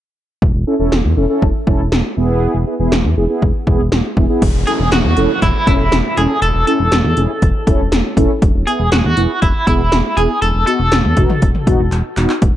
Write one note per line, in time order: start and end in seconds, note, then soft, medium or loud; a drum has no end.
0.42 0.52 E1 loud
0.42 kick loud
0.55 0.65 E1 loud
0.67 0.74 C#4 medium
0.67 0.74 E4 medium
0.67 0.74 A4 medium
0.80 0.90 E1 medium
0.80 0.94 C#4 medium
0.80 0.94 E4 medium
0.80 0.94 A4 medium
0.92 1.02 E1 loud
0.92 snare loud
1.04 1.15 E2 loud
1.17 1.27 E1 loud
1.17 1.24 C#4 medium
1.17 1.24 E4 medium
1.17 1.24 A4 medium
1.30 1.44 C#4 medium
1.30 1.44 E4 medium
1.30 1.44 A4 medium
1.42 1.52 E1 loud
1.42 kick medium
1.67 1.77 E1 loud
1.67 1.81 C#4 medium
1.67 1.81 E4 medium
1.67 1.81 A4 medium
1.67 kick medium
1.79 1.90 E1 medium
1.92 2.02 E1 loud
1.92 snare loud
2.17 2.47 E1 loud
2.17 2.57 B3 medium
2.17 2.57 E4 medium
2.17 2.57 G#4 loud
2.55 2.65 E1 medium
2.67 2.74 B3 medium
2.67 2.74 E4 medium
2.67 2.74 G#4 medium
2.79 2.90 E1 medium
2.79 2.94 B3 medium
2.79 2.94 E4 medium
2.79 2.94 G#4 medium
2.92 3.02 E1 loud
2.92 snare loud
3.05 3.15 E2 medium
3.17 3.27 E1 loud
3.17 3.24 B3 medium
3.17 3.24 E4 medium
3.17 3.24 G#4 medium
3.30 3.44 B3 medium
3.30 3.44 E4 medium
3.30 3.44 G#4 medium
3.42 3.52 E1 loud
3.42 kick medium
3.67 3.77 E1 loud
3.67 3.81 B3 medium
3.67 3.81 E4 medium
3.67 3.81 G#4 medium
3.67 kick medium
3.80 3.90 E1 medium
3.92 4.02 E1 loud
3.92 snare loud
4.17 4.27 E1 loud
4.17 4.24 B3 medium
4.17 4.24 E4 medium
4.17 4.24 G#4 medium
4.17 kick medium
4.30 4.42 B3 medium
4.30 4.42 E4 medium
4.30 4.42 G#4 medium
4.42 4.52 E1 loud
4.42 kick loud
4.42 closed hi-hat medium
4.42 crash medium
4.42 downlifter medium
4.54 4.65 E1 medium
4.67 4.81 C#4 medium
4.67 4.81 E4 medium
4.67 4.92 G#4 medium
4.67 4.81 A4 medium
4.67 closed hi-hat medium
4.79 4.90 E1 loud
4.92 5.02 E1 loud
4.92 5.42 F#4 medium
4.92 snare loud
4.92 closed hi-hat medium
5.04 5.15 E2 loud
5.17 5.27 E1 loud
5.17 5.31 C#4 medium
5.17 5.31 E4 medium
5.17 5.31 A4 medium
5.17 closed hi-hat medium
5.42 5.52 E1 loud
5.42 5.66 E4 medium
5.42 kick medium
5.42 closed hi-hat medium
5.67 5.77 E1 loud
5.67 5.81 C#4 medium
5.67 5.81 E4 medium
5.67 6.19 E4 medium
5.67 5.81 A4 medium
5.67 kick loud
5.67 closed hi-hat medium
5.79 5.90 E1 loud
5.92 6.02 E1 loud
5.92 snare loud
5.92 closed hi-hat medium
6.17 6.27 E1 loud
6.17 6.31 C#4 medium
6.17 6.31 E4 medium
6.17 6.42 G#4 loud
6.17 6.31 A4 medium
6.17 closed hi-hat medium
6.42 6.52 E1 loud
6.42 6.66 A4 loud
6.42 closed hi-hat medium
6.55 6.65 E1 loud
6.67 6.81 C#4 medium
6.67 6.81 E4 medium
6.67 6.81 A4 medium
6.67 8.13 A4 loud
6.67 closed hi-hat medium
6.80 6.90 E1 loud
6.92 7.02 E1 loud
6.92 snare loud
6.92 closed hi-hat medium
7.04 7.15 E2 loud
7.17 7.27 E1 loud
7.17 7.31 C#4 medium
7.17 7.31 E4 medium
7.17 7.31 G#4 medium
7.17 closed hi-hat medium
7.42 7.52 E1 loud
7.42 kick medium
7.42 closed hi-hat medium
7.67 7.77 E1 loud
7.67 7.81 C#4 medium
7.67 7.81 E4 medium
7.67 7.81 A4 loud
7.67 kick loud
7.67 closed hi-hat medium
7.80 7.90 E1 medium
7.92 8.02 E1 loud
7.92 snare loud
7.92 closed hi-hat medium
8.17 8.27 E1 loud
8.17 8.31 C#4 medium
8.17 8.31 E4 medium
8.17 8.31 A4 loud
8.17 kick loud
8.17 closed hi-hat medium
8.42 8.52 E1 loud
8.42 kick loud
8.42 closed hi-hat medium
8.55 8.65 E1 loud
8.67 8.81 B3 medium
8.67 8.81 E4 medium
8.67 8.92 G#4 medium
8.67 8.81 G#4 medium
8.67 closed hi-hat medium
8.80 8.90 E1 loud
8.92 9.02 E1 loud
8.92 8.99 F#4 medium
8.92 snare loud
8.92 closed hi-hat medium
8.99 9.06 G#4 medium
9.05 9.15 E2 loud
9.05 9.42 F#4 medium
9.17 9.27 E1 loud
9.17 9.31 B3 medium
9.17 9.31 E4 medium
9.17 9.31 G#4 medium
9.17 closed hi-hat medium
9.42 9.52 E1 loud
9.42 9.65 E4 medium
9.42 kick medium
9.42 closed hi-hat medium
9.67 9.77 E1 loud
9.67 9.81 B3 medium
9.67 10.18 E4 medium
9.67 9.81 E4 medium
9.67 9.81 G#4 medium
9.67 kick medium
9.67 closed hi-hat medium
9.80 9.90 E1 loud
9.92 10.02 E1 medium
9.92 snare loud
9.92 closed hi-hat medium
10.17 10.27 E1 loud
10.17 10.31 B3 medium
10.17 10.31 E4 medium
10.17 10.42 G#4 loud
10.17 10.31 G#4 medium
10.17 closed hi-hat medium
10.42 10.52 E1 loud
10.42 10.66 A4 loud
10.42 closed hi-hat medium
10.55 10.65 E1 loud
10.67 10.81 B3 medium
10.67 10.81 D#4 medium
10.67 10.81 F#4 medium
10.67 12.13 A4 loud
10.67 closed hi-hat medium
10.80 10.90 E1 medium
10.92 11.02 E1 loud
10.92 snare loud
10.92 closed hi-hat medium
11.04 11.15 E2 loud
11.17 11.27 E1 loud
11.17 11.31 B3 medium
11.17 11.31 D#4 medium
11.17 11.31 F#4 medium
11.17 kick medium
11.17 closed hi-hat medium
11.30 mid tom medium
11.42 11.52 E1 loud
11.42 kick medium
11.42 closed hi-hat medium
11.55 mid tom medium
11.67 11.77 E1 loud
11.67 11.81 B3 medium
11.67 11.81 D#4 medium
11.67 11.81 F#4 loud
11.67 kick loud
11.67 closed hi-hat medium
11.79 11.90 E1 loud
11.92 12.02 E1 loud
11.92 clap medium
11.92 closed hi-hat medium
12.17 12.27 E1 loud
12.17 12.31 B3 medium
12.17 12.31 D#4 medium
12.17 12.31 F#4 loud
12.17 clap medium
12.17 closed hi-hat medium
12.29 clap medium
12.42 12.52 E1 loud
12.42 kick loud
12.42 closed hi-hat medium